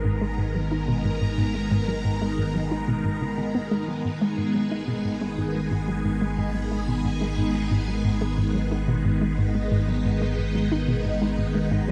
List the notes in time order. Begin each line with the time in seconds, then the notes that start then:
Already playing: G#1 D#3 G#3 B3 A#4
0.05 G#2
0.21 G#3
0.38 G#2
0.55 F#3
0.71 D#4
0.88 B2
1.05 G#2
1.21 G#2
1.38 G#2
1.55 G#3
1.71 G#2
1.88 F#3
2.05 G#2
2.21 G#3
2.38 G#2
2.55 F#3
2.71 D#4
2.88 B2
3.05 G#2
3.22 C#3
3.38 D#3
3.55 B3
3.71 G#3
3.88 F#3
4.04 G#1 G#2 G#4
4.21 G#3
4.38 G#2
4.55 F#3
4.71 D#4
4.88 B2
5.05 G#2
5.21 G#3
5.38 G#2
5.55 G#3
5.71 G#2
5.88 F#3
6.05 G#2
6.21 G#3
6.38 G#2
6.55 F#3
6.71 D#4
6.88 B2
7.05 G#2
7.21 G#3
7.38 G#2
7.55 G#3
7.71 G#2
7.88 F#3
8.05 G#2
8.21 G#3
8.38 G#2
8.55 F#3
8.71 D#4
8.88 B2
9.05 G#2
9.21 G#3
9.38 G#2 D#4
9.55 G#3
9.72 G#2
9.88 F#3
10.05 G#2
10.22 G#3
10.38 G#2
10.55 F#3
10.72 D#4
10.88 B2
11.05 G#2
11.22 G#3
11.38 G#2
11.55 G#3
11.71 G#2
11.88 F#3